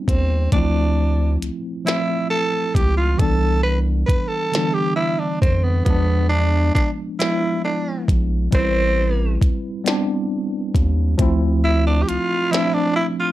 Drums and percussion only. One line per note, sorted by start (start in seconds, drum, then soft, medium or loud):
0.08 kick medium
0.08 closed hi-hat medium
0.52 kick medium
0.52 closed hi-hat medium
1.42 closed hi-hat medium
1.87 snare medium
1.87 closed hi-hat medium
2.75 kick medium
2.75 closed hi-hat medium
3.19 kick loud
3.19 closed hi-hat medium
4.08 kick medium
4.08 closed hi-hat medium
4.54 snare medium
4.54 closed hi-hat medium
5.42 kick medium
5.42 closed hi-hat medium
5.86 kick loud
5.86 closed hi-hat medium
6.75 kick medium
6.75 closed hi-hat medium
7.20 snare medium
7.20 closed hi-hat medium
8.08 kick loud
8.08 closed hi-hat medium
8.52 kick loud
8.52 closed hi-hat medium
9.41 kick medium
9.41 closed hi-hat medium
9.86 snare loud
9.86 closed hi-hat medium
10.75 kick medium
10.75 closed hi-hat medium
11.19 kick loud
11.19 closed hi-hat medium
12.09 closed hi-hat medium
12.53 snare medium
12.53 closed hi-hat medium